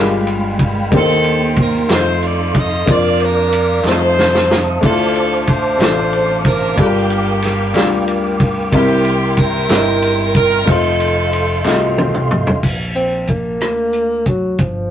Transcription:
Already playing: G1 G2 G#3 A#3 D4 F4 G4 F5 G5 B5
0.03 B5
0.27 ride
0.59 kick, ride
0.91 D#2 D#3 A#3 C4 D4 D#4 G4 C5 G5 C6, kick, ride
0.97 D#4 A4
1.24 ride
1.56 kick, ride
1.60 A#4
1.88 F2 A3 D#4 F4 A4 C5 F5, snare, clap, ride
1.93 D#4 A4 C5
2.23 D5, ride
2.55 D#5, kick, ride
2.86 F2 A#3 D4 F4 A#4 C5 D5 D6, kick, ride
2.91 F4 A#4 D5
2.96 D5
3.20 D4 F4 A#4, ride
3.53 ride
3.84 F2 G3 D#4 F4 A4 C5 A5 D#6, snare, clap
3.90 A3
4.19 snare
4.35 snare
4.51 snare
4.81 D2 D3 A3 D4 E4 C5 D6, kick, ride
4.85 C4 F4 A4
4.90 F4
5.16 ride
5.47 F4 A4 C5, kick, ride
5.78 A1 A3 D4 F4, snare, clap, ride
5.82 A4
6.13 ride
6.45 A#4, kick, ride
6.76 G1 G2 G3 D4 F4 A4 A#4 G5, kick, ride
6.80 A#3 D4 G4
6.86 A#4
7.10 ride
7.42 snare, ride
7.73 D2 G3 D4 F4, snare, clap, ride
7.78 G4
8.08 ride
8.40 kick, ride
8.72 C2 C3 G3 A#3 C4 E4 G4 A#4 E5 C6, kick, ride
9.05 ride
9.37 E4 G4 A#4, kick, ride
9.69 G1 G3 C4 D#4 A#4, snare, clap, ride
9.77 E4
10.02 ride
10.35 A#4, kick, ride
10.65 F1 A3 D#4 F4 A4 C5 D#5 F5, kick, ride
10.69 C4 D#4 A4
11.00 ride
11.33 ride
11.64 C2 A3 D#4 F4 F#4, snare, clap
11.74 G4
11.98 high tom
12.15 mid tom
12.31 mid tom
12.47 floor tom
12.63 A#1, kick, crash
12.95 C4, closed hi-hat
13.27 A#3, kick, closed hi-hat
13.60 D2, cross-stick, closed hi-hat
13.93 closed hi-hat
14.26 F#3, kick, closed hi-hat
14.58 G1 F3, kick, closed hi-hat

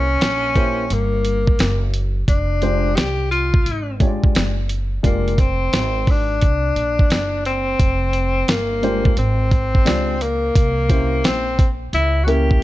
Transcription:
Already playing: C2 C#4
0.21 A#1, snare, closed hi-hat
0.55 A#3 C#4 E4 G4 C5, kick, closed hi-hat
0.90 G1 A#3, closed hi-hat
1.25 closed hi-hat
1.47 kick
1.59 F#1, snare, closed hi-hat
1.94 closed hi-hat
2.28 F1 D4, kick, closed hi-hat
2.62 G#3 D4 F4 G4 C5, closed hi-hat
2.96 C2 G4, snare, closed hi-hat
3.31 F4, closed hi-hat
3.54 kick
3.66 G#1, closed hi-hat
4.00 G#3 D4 F4 G4 C#5, kick, closed hi-hat
4.07 D5
4.24 kick
4.35 F#1, snare, closed hi-hat
4.69 closed hi-hat
5.03 F1 G#3 A#3 D4 F4 G4 D5, kick, closed hi-hat
5.28 closed hi-hat
5.38 C4, kick, closed hi-hat
5.73 G#1, snare, closed hi-hat
6.07 D4, kick, open hi-hat
6.41 C2, kick, closed hi-hat
6.76 A#1, closed hi-hat
6.99 kick
7.10 F#1, snare, closed hi-hat
7.45 C4, closed hi-hat
7.79 F1, kick, closed hi-hat
8.13 closed hi-hat
8.48 G1 A#3, snare, closed hi-hat
8.83 G#3 D4 F4 G4 C5, closed hi-hat
9.05 kick
9.17 G#1 C4, closed hi-hat
9.51 kick, closed hi-hat
9.75 kick
9.85 C#2 G#3 D4 F4 G4 D5, snare, closed hi-hat
10.21 A#3, closed hi-hat
10.55 C2, kick, closed hi-hat
10.89 A#3 C#4 E4 G4 C5, kick, closed hi-hat
11.24 A#1 C4, snare, closed hi-hat
11.59 kick, closed hi-hat
11.93 C#2 E4, closed hi-hat
12.24 A#3 C#4 E4 F#4 G4 A#4
12.28 G4, closed hi-hat
12.51 kick

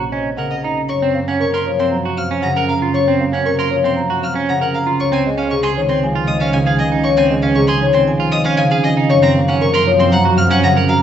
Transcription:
Already playing: A#1 C3 C#3 F#3 C4
0.12 C4 C#4 D#5
0.37 C#3 A#4 F#5
0.51 D#5
0.63 D#4 A#5
0.89 F#2 C#5 C#6
1.02 C4
1.15 A#3 F5
1.28 C#4 F#5
1.40 C3 A#4 C#6
1.54 A#4 C6
1.66 F3 C#5
1.79 C4 C6
1.91 F#3 A#5
2.05 F#4
2.17 C4 F5 F6
2.31 C#4
2.42 C#3 F#5 A#5
2.56 A#4 F#5
2.68 F5 A#5
2.82 F4
2.94 C#5 C#6
3.08 C4
3.20 A#3 F5
3.33 C#4 F#5
3.45 C3 A#4 C#6
3.59 A#4 C6
3.71 F3 C#5
3.84 C4 C6
3.96 F#3 A#5
4.10 F#4
4.22 C4 F5 F6
4.35 C#4
4.49 C#3 F#5 A#5
4.61 A#4 F#5
4.74 F5 A#5
4.87 F4
5.00 C#2 C#5 C#6
5.12 C4 G#5
5.26 G#3 D#5
5.38 C#4 F5
5.50 C3 G#4 C#6
5.63 G#4 C6
5.77 D#3 C#5
5.89 C4 C6
6.03 F3 G#5
6.15 F4
6.27 C4 D#5 D#6
6.40 C#4 F5
6.53 C#3 F5 G#5
6.66 G#4 F5
6.78 F3 D#5 G#5
6.92 D#4
7.04 C#5 C#6
7.17 C4 G#5
7.31 G#3 D#5
7.42 C#4 F5
7.55 C3 G#4 C#6
7.67 G#4 C6
7.81 D#3 C#5
7.93 C4 C6
8.08 F3 G#5
8.20 F4
8.32 C4 D#5 D#6
8.45 C#4 F5
8.57 C#3 F5 G#5
8.71 G#4 F5
8.84 F3 D#5 G#5
8.97 D#4
9.10 F#2 C#5 C#6
9.22 C4 A#5
9.35 A#3 F5
9.48 C#4 F#5
9.61 C3 A#4 C#6
9.74 A#4 C6
9.87 F3 C#5
9.99 C4 C6
10.12 F#3 F#5 A#5
10.25 F#4
10.38 C4 F5 F6
10.51 C#4 F#5
10.64 C#3 F#5 A#5
10.77 A#4 F#5
10.88 F#3 F5 A#5

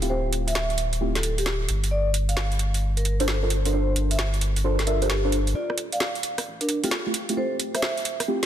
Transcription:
Already playing: D1
0.02 A3 C4 E4 F4 G4, closed hi-hat
0.10 A3 C4 E4 F4 G4 C5
0.33 closed hi-hat
0.47 E5, closed hi-hat
0.55 snare
0.70 closed hi-hat
0.78 closed hi-hat
0.93 closed hi-hat
1.01 A3 C4 E4 F4 G4
1.15 A4, snare, closed hi-hat
1.23 closed hi-hat
1.38 G4, closed hi-hat
1.46 snare
1.69 G1, closed hi-hat
1.84 closed hi-hat
1.91 D5
2.14 closed hi-hat
2.29 F5, closed hi-hat
2.37 snare
2.52 closed hi-hat
2.59 closed hi-hat
2.74 closed hi-hat
2.97 A#4, closed hi-hat
3.05 closed hi-hat
3.20 D4 F4 A4 A#4 C5, closed hi-hat
3.28 snare
3.43 D4 F4 A4 A#4 C5
3.50 closed hi-hat
3.65 D4 F4 A4 A#4 C5, closed hi-hat
3.73 D4 F4 A4 A#4 C5
3.96 closed hi-hat
4.11 E5, closed hi-hat
4.19 snare
4.34 closed hi-hat
4.41 closed hi-hat
4.56 closed hi-hat
4.64 D4 F4 A4 A#4 C5
4.79 A4, snare, closed hi-hat
4.87 D4 F4 A4 A#4 E5, closed hi-hat
5.02 D4 F4 G4 A4 A#4 C5, closed hi-hat
5.10 snare
5.24 D4 F4 A4 A#4 C5
5.32 closed hi-hat
5.47 closed hi-hat
5.55 D1 F4 D5
5.70 cross-stick
5.78 closed hi-hat
5.92 D1 D5 F5, closed hi-hat
6.00 snare
6.15 closed hi-hat
6.23 closed hi-hat
6.38 cross-stick, closed hi-hat
6.46 A1
6.61 D4 A#4, closed hi-hat
6.69 D1, closed hi-hat
6.83 D1 A3 C4 E4 F4 G4 A4, closed hi-hat
6.91 snare
7.06 A3 C4 E4 F4 G4
7.14 closed hi-hat
7.29 F1 A3 C4 E4 F4 G4, closed hi-hat
7.37 D1 A3 C4 E4 F4 G4 A4 C5
7.60 closed hi-hat
7.75 D1 C5 E5, cross-stick, closed hi-hat
7.82 snare
7.97 closed hi-hat
8.05 closed hi-hat
8.20 cross-stick, closed hi-hat
8.28 A3 C4 E4 F4 G4

